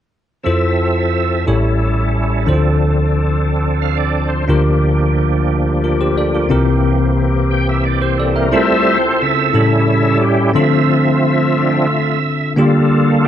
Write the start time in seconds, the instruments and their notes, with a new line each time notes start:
0.43 tine electric piano F2 E4 F4 A4 C5, tonewheel organ F3 C4 A4 E5
1.46 tine electric piano A1 A2 E4 G4 A4 C#5, tonewheel organ G3 C#4 E4 G#4
1.53 tonewheel organ A4
2.45 tine electric piano D2 D3 D4 E4 A4 C5, tonewheel organ F3 C4 D4 A4
2.54 tine electric piano F4
3.82 tonewheel organ F5
3.97 tonewheel organ D5
4.28 tonewheel organ C5
4.48 tonewheel organ D2 F3 A#3 D4 F#4, tine electric piano D2 D3 D4 F4 G4 A#4
4.55 tonewheel organ G4
5.84 tine electric piano F4 A#4
6.01 tine electric piano G4 C5
6.18 tine electric piano A4 D5
6.35 tine electric piano F4 A#4
6.49 tine electric piano C2 C3 C4 E4 G4 A#4, tonewheel organ E3 A#3 C4 G4
7.51 tonewheel organ G5
7.69 tonewheel organ E5
7.85 tonewheel organ D5
8.01 tine electric piano G4 C5, tonewheel organ C5
8.18 tonewheel organ A4, tine electric piano A4 D5
8.35 tonewheel organ A#4, tine electric piano A#4 E5
8.52 tonewheel organ G3 A3 C4 A4 C5 E5, tine electric piano C4 E4 F4 A4
9.21 tonewheel organ C#3 A4 E5
9.53 tine electric piano A2 C#4 E4 G4 A4, tonewheel organ G3 C#4 E4
10.21 tonewheel organ G4
10.53 tine electric piano D3 C4 D4 F4 A4, tonewheel organ F3 A3 C4 F4 E5
11.58 tonewheel organ F3 C4 D4
12.56 tine electric piano D3 A#3 D4 F4 G4, tonewheel organ G3 A#3 F4 A4
13.25 tonewheel organ G4